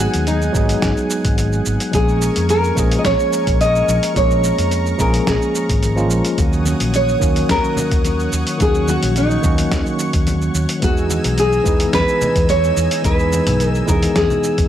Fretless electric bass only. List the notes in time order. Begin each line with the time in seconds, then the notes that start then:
0.14 D#2
0.55 G#1
0.83 G#1
1.25 G#1
1.66 G#1
1.94 A#1
2.37 F2
2.77 A#1
3.05 A#1
3.47 A#1
3.88 A#1
4.16 A#1
4.58 F2
5.00 A#1
5.28 A#1
5.70 G#1
6.11 A#1
6.38 D#2
6.81 A#1
7.22 D#2
7.50 D#2
7.92 D#2
8.33 D#2
8.61 D#2
9.03 A#1
9.44 D#2
9.72 D#2
10.14 D#2
10.54 D#2
10.83 E2
11.25 B1
11.66 E2
11.94 E2
12.36 E2
12.77 E2
13.05 E2
13.47 B1
13.88 E2
14.16 E2
14.58 E2